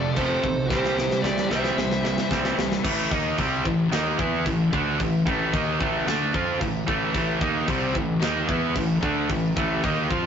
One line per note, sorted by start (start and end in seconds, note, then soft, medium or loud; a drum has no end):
0.00 0.14 F2 medium
0.00 0.15 C3 medium
0.00 0.12 A4 medium
0.00 0.18 D5 loud
0.05 0.12 F3 medium
0.05 0.13 A3 medium
0.12 0.20 F3 medium
0.12 0.21 A3 medium
0.12 0.66 A4 medium
0.12 0.68 C5 medium
0.12 crash medium
0.17 0.36 F1 loud
0.17 0.42 F2 loud
0.17 0.43 C3 loud
0.17 kick medium
0.21 0.28 F3 medium
0.21 0.28 A3 medium
0.28 0.35 F3 medium
0.28 0.36 A3 medium
0.35 0.43 F3 medium
0.35 0.44 A3 medium
0.44 0.71 B1 medium
0.44 0.68 F2 medium
0.44 0.68 C3 medium
0.44 kick medium
0.66 0.78 C3 medium
0.66 1.18 G4 medium
0.66 1.25 C5 loud
0.70 1.08 C2 loud
0.70 0.77 E3 loud
0.70 0.96 G3 loud
0.70 0.96 C4 loud
0.70 kick loud
0.70 snare medium
0.78 0.85 C3 medium
0.78 0.85 E3 medium
0.85 0.93 C3 medium
0.85 0.93 E3 medium
0.85 snare medium
0.93 1.01 C3 medium
0.93 1.00 E3 medium
0.97 1.21 C3 medium
0.97 1.08 E3 medium
0.97 1.21 G3 medium
0.97 snare medium
1.01 1.08 C3 medium
1.08 1.16 C3 medium
1.08 1.16 E3 medium
1.08 snare medium
1.16 1.24 C3 medium
1.16 1.23 E3 medium
1.22 1.43 C2 medium
1.22 1.30 C3 medium
1.22 1.31 E3 medium
1.22 1.48 G3 medium
1.22 1.48 G4 medium
1.22 1.49 D5 medium
1.22 snare medium
1.30 1.38 C3 medium
1.30 1.38 E3 medium
1.38 1.47 C3 medium
1.38 1.46 E3 medium
1.38 snare medium
1.47 1.70 C2 loud
1.47 1.55 C3 medium
1.47 1.54 E3 loud
1.47 2.27 C5 medium
1.47 2.27 E5 medium
1.51 1.62 C3 medium
1.51 1.62 E3 medium
1.51 1.76 G3 loud
1.51 1.76 C4 loud
1.51 snare medium
1.62 1.70 C3 medium
1.62 1.69 E3 loud
1.62 snare medium
1.69 1.77 C3 medium
1.69 1.77 E3 medium
1.77 2.16 C2 loud
1.77 1.85 C3 medium
1.77 1.85 E3 medium
1.77 2.02 G3 medium
1.77 snare medium
1.86 1.92 C3 medium
1.86 1.92 E3 medium
1.92 2.00 C3 medium
1.92 2.00 E3 loud
1.92 snare medium
2.00 2.08 C3 medium
2.00 2.07 E3 medium
2.05 2.15 C3 medium
2.05 2.15 E3 medium
2.05 2.29 G3 medium
2.05 snare medium
2.15 2.23 C3 medium
2.15 2.22 E3 medium
2.15 snare medium
2.23 2.31 C3 medium
2.23 2.30 E3 medium
2.30 2.50 C2 medium
2.30 2.38 C3 medium
2.30 2.38 E3 medium
2.30 2.57 G3 loud
2.30 2.57 C4 loud
2.30 kick medium
2.30 snare loud
2.38 2.46 C3 medium
2.38 2.45 E3 medium
2.45 2.54 C3 medium
2.45 2.52 E3 medium
2.45 snare medium
2.52 2.61 C3 medium
2.52 2.60 E3 medium
2.58 2.77 C2 medium
2.58 2.69 C3 medium
2.58 2.68 E3 medium
2.58 2.82 G3 medium
2.58 snare loud
2.68 2.77 C3 medium
2.68 2.76 E3 medium
2.68 snare medium
2.76 2.85 C3 medium
2.76 2.84 E3 medium
2.84 3.10 A1 loud
2.84 3.10 A2 loud
2.84 3.11 E3 loud
2.84 3.11 A3 loud
2.84 kick loud
2.84 crash loud
2.84 crash medium
3.11 3.36 D#2 medium
3.11 3.38 D#3 medium
3.11 3.38 A#3 medium
3.11 3.38 D#4 loud
3.11 kick loud
3.38 3.64 C2 loud
3.38 3.64 C3 medium
3.38 3.65 G3 loud
3.38 3.65 C4 loud
3.38 kick loud
3.38 crash medium
3.65 3.90 A1 medium
3.65 3.87 A2 medium
3.65 3.87 E3 medium
3.65 kick medium
3.92 4.17 D#2 loud
3.92 4.17 D#3 medium
3.92 4.18 A#3 medium
3.92 4.18 D#4 medium
3.92 snare loud
3.92 crash medium
4.18 4.44 E2 loud
4.18 4.44 E3 medium
4.18 4.45 B3 medium
4.18 4.45 E4 loud
4.18 kick loud
4.46 4.71 A1 medium
4.46 4.67 A2 medium
4.46 4.67 E3 medium
4.46 kick medium
4.46 crash medium
4.72 4.98 D2 loud
4.72 4.99 D3 medium
4.72 4.99 A3 loud
4.72 4.99 D4 loud
4.72 kick loud
4.99 5.25 A1 medium
4.99 5.21 A2 medium
4.99 5.21 E3 medium
4.99 kick loud
4.99 crash medium
5.26 5.52 A1 medium
5.26 5.52 A2 medium
5.26 5.53 E3 loud
5.26 5.53 A3 medium
5.26 kick loud
5.53 5.78 D#2 medium
5.53 5.79 D#3 loud
5.53 5.80 A#3 loud
5.53 5.80 D#4 loud
5.53 kick loud
5.53 crash medium
5.80 6.06 A1 loud
5.80 6.06 A2 medium
5.80 6.07 E3 loud
5.80 6.07 A3 loud
5.80 kick loud
6.07 6.32 D2 loud
6.07 6.33 D3 medium
6.07 6.34 A3 medium
6.07 6.34 D4 medium
6.07 snare loud
6.07 crash medium
6.34 6.59 F2 loud
6.34 6.60 F3 medium
6.34 6.60 C4 medium
6.34 6.61 F4 loud
6.34 kick loud
6.61 6.86 A1 medium
6.61 6.82 A2 medium
6.61 6.83 E3 medium
6.61 kick loud
6.61 crash medium
6.87 7.13 A1 loud
6.87 7.13 A2 medium
6.87 7.14 E3 loud
6.87 7.14 A3 loud
6.87 kick loud
7.14 7.40 A1 loud
7.14 7.39 A2 loud
7.14 7.40 E3 loud
7.14 7.41 A3 loud
7.14 kick loud
7.14 crash medium
7.40 7.66 D#2 loud
7.40 7.66 D#3 medium
7.40 7.67 A#3 loud
7.40 7.67 D#4 loud
7.40 kick loud
7.67 7.93 C2 loud
7.67 7.93 C3 loud
7.67 7.93 G3 loud
7.67 7.94 C4 loud
7.67 kick loud
7.67 crash medium
7.93 8.20 A1 medium
7.93 8.16 A2 medium
7.93 8.16 E3 medium
7.93 kick medium
8.20 8.47 D#2 medium
8.20 8.46 D#3 medium
8.20 8.47 A#3 loud
8.20 8.47 D#4 loud
8.20 snare loud
8.20 crash medium
8.46 8.74 E2 loud
8.46 8.74 E3 medium
8.46 8.74 B3 loud
8.46 8.75 E4 loud
8.46 kick loud
8.74 9.01 A1 medium
8.74 8.97 A2 medium
8.74 8.97 E3 medium
8.74 kick loud
8.74 crash medium
9.01 9.28 D2 loud
9.01 9.28 D3 medium
9.01 9.29 A3 loud
9.01 9.29 D4 loud
9.01 kick loud
9.29 9.55 A1 medium
9.29 9.51 A2 medium
9.29 9.51 E3 medium
9.29 kick loud
9.29 crash medium
9.56 9.82 A1 medium
9.56 9.83 A2 medium
9.56 9.83 E3 loud
9.56 9.83 A3 loud
9.56 kick loud
9.83 10.09 D#2 loud
9.83 10.10 D#3 loud
9.83 10.10 A#3 loud
9.83 10.10 D#4 loud
9.83 kick loud
9.83 crash medium
10.11 10.26 F2 loud
10.11 10.26 F3 medium
10.11 10.26 C4 medium
10.11 10.26 F4 loud
10.11 kick loud